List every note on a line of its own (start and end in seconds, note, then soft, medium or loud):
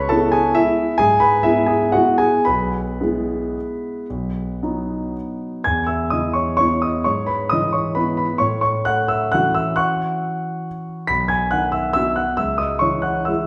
0.00 0.57 C#2 medium
0.00 0.57 B4 medium
0.00 0.58 C#5 medium
0.00 0.57 B5 medium
0.00 0.58 C#6 loud
0.09 0.97 G#3 soft
0.09 0.97 B3 soft
0.09 0.53 E4 medium
0.09 0.31 A4 medium
0.09 0.32 A5 medium
0.32 0.54 G#4 medium
0.32 0.55 G#5 medium
0.55 0.96 E4 medium
0.55 0.99 E5 medium
0.98 1.44 G#2 medium
0.98 1.20 G#4 medium
0.98 1.21 G#5 loud
1.20 1.43 B4 medium
1.20 1.44 B5 medium
1.43 1.90 G#3 soft
1.43 1.90 B3 soft
1.43 1.67 E4 medium
1.43 1.68 E5 medium
1.66 1.91 G#4 medium
1.66 1.93 G#5 medium
1.92 2.42 G#3 soft
1.92 2.42 B3 soft
1.92 2.43 E4 soft
1.92 2.17 F#4 medium
1.92 2.19 F#5 medium
2.18 2.43 G#4 medium
2.18 2.45 G#5 medium
2.45 2.99 B1 medium
2.45 5.11 B4 medium
2.45 5.14 B5 medium
3.01 4.05 G#3 soft
3.01 4.05 B3 soft
3.01 4.05 E4 soft
4.10 4.60 B1 soft
4.63 5.62 F#3 soft
4.63 5.62 B3 soft
4.63 5.63 D#4 soft
5.64 7.02 E2 soft
5.64 5.86 G#5 soft
5.64 5.88 G#6 medium
5.87 6.09 E5 soft
5.87 6.10 E6 medium
6.10 6.88 E3 soft
6.10 6.33 D#5 medium
6.10 6.34 D#6 medium
6.33 6.56 C#5 soft
6.33 6.55 C#6 medium
6.57 7.02 B3 soft
6.57 7.02 E4 soft
6.57 6.81 C#5 medium
6.57 6.82 C#6 medium
6.82 7.04 D#5 soft
6.82 7.05 D#6 medium
7.04 8.37 G#2 soft
7.04 7.26 C#5 medium
7.04 7.27 C#6 medium
7.26 7.48 B4 soft
7.26 7.50 B5 medium
7.49 8.24 E3 soft
7.49 7.72 D#5 medium
7.49 7.73 D#6 medium
7.73 7.95 C#5 soft
7.73 7.96 C#6 soft
7.95 8.37 B3 soft
7.95 8.37 E4 soft
7.95 8.16 B4 medium
7.95 8.16 B5 medium
8.17 8.39 B4 medium
8.17 8.40 B5 medium
8.38 9.74 A2 soft
8.38 8.61 C#5 medium
8.38 8.60 C#6 medium
8.61 8.84 C#5 soft
8.61 8.85 C#6 medium
8.85 9.61 A3 soft
8.85 9.08 F#5 medium
8.85 9.09 F#6 medium
9.08 9.31 E5 medium
9.08 9.32 E6 medium
9.32 11.07 E3 soft
9.32 11.07 C#4 soft
9.32 11.07 F#4 soft
9.32 9.54 F#5 medium
9.32 9.55 F#6 medium
9.54 9.76 E5 medium
9.54 9.77 E6 medium
9.76 11.06 F#5 medium
9.76 11.05 C#6 medium
9.76 11.09 F#6 medium
11.07 12.36 B1 medium
11.07 11.29 B5 medium
11.07 11.30 B6 medium
11.28 11.51 G#5 medium
11.28 11.51 G#6 medium
11.51 12.23 D#3 soft
11.51 11.72 F#5 medium
11.51 11.73 F#6 medium
11.72 11.92 E5 medium
11.72 11.92 E6 medium
11.93 12.35 B3 soft
11.93 12.35 F#4 soft
11.93 12.15 E5 medium
11.93 12.17 E6 medium
12.16 12.37 F#5 soft
12.16 12.38 F#6 medium
12.37 13.47 C#2 soft
12.37 12.58 E5 medium
12.37 12.59 E6 medium
12.58 12.80 D#5 soft
12.58 12.81 D#6 medium
12.79 13.47 E3 soft
12.79 13.03 C#5 medium
12.79 13.03 C#6 medium
13.02 13.26 F#5 soft
13.02 13.27 F#6 medium
13.25 13.47 G#3 soft
13.25 13.47 E4 soft
13.25 13.47 E5 soft
13.25 13.47 E6 medium